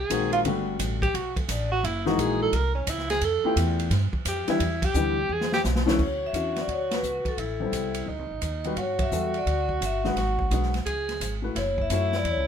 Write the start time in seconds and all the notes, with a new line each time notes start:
0.00 G#4
0.10 A#1 D#3 G#3 A#3 C4 F#4, kick, hi-hat pedal, ride
0.33 F4, ride
0.45 G1 D3 G3 A3 B3 F#4, kick, ride
0.79 A1, kick, hi-hat pedal, ride
1.02 G4, kick, ride
1.14 B1 F#4, kick, ride
1.36 A3, kick, ride
1.48 A1 D4, kick, hi-hat pedal, ride
1.72 F#4
1.84 F#1 E4, kick, ride
2.06 E3 G#3 A#3 D#4 F#4, snare
2.18 A#1 G#4, kick, hi-hat pedal, ride
2.42 A4
2.53 C2 A#4, kick, ride
2.75 C#4
2.87 C#2 E4, kick, hi-hat pedal, ride
2.98 snare
3.10 G#4, snare, ride
3.21 F2 A4, kick, ride
3.44 A3 B3 E4 F4 G4, muted upright bass stroke
3.56 E2, kick, hi-hat pedal, ride
3.79 ride
3.90 G2, kick, snare, ride
4.13 muted upright bass stroke, kick
4.25 F2 G4, kick, hi-hat pedal, ride
4.48 E3 G3 B3 D4 E4 G4, muted upright bass stroke, snare, ride
4.60 E2, kick, ride
4.82 G4, kick, ride
4.94 D2 E3 G3 B3 D4 G4, kick, hi-hat pedal
5.29 E2 G#4
5.41 snare
5.52 G4, snare
5.64 B1, snare, hi-hat pedal
5.76 snare
5.86 E3 A3 C#4 D4 E4, snare
5.99 D2 F#4, kick, crash
6.04 C#5
6.26 E5
6.33 E2 E3 C#4 D4 F#4, kick, hi-hat pedal, ride
6.56 snare, ride
6.61 D5
6.68 D2, kick, ride
6.72 C#5
6.91 B4, snare, ride
7.03 C#2, hi-hat pedal
7.25 A4, muted upright bass stroke, kick, ride
7.37 A1 E4, kick, ride
7.60 G3 B3 C4 A4
7.72 C2, kick, hi-hat pedal, ride
7.94 ride
8.06 D2 D#4, kick
8.19 C2
8.31 A1
8.42 D#2, kick, hi-hat pedal, ride
8.64 G3 B3 F#4 B4, ride
8.76 G2 F#4 C#5, kick, ride
8.99 E5, kick, ride
9.12 E2 G3 B3 F#4 A4, hi-hat pedal
9.34 D5, ride
9.46 D2, kick, ride
9.69 kick
9.81 G1 E5, kick, hi-hat pedal, ride
10.04 G#3 D4 F#4 B4 F#5, snare
10.16 G#1 F#4, kick, snare, ride
10.39 kick
10.51 B1 G#3 D4 F#4 B4, kick, hi-hat pedal, ride
10.63 snare
10.74 snare, ride
10.86 C#2 G#4, kick, ride
11.09 snare, ride
11.20 G#1, kick, hi-hat pedal, ride
11.42 A3 E4 F#4 B4
11.55 F#1 E4 C#5, kick, snare, ride
11.78 E5, kick
11.90 F#2 A3 E4 F#4 C#5, kick, hi-hat pedal, ride
11.95 E5
12.13 D5, snare
12.24 E2, kick, ride
12.30 C#5
12.37 C#2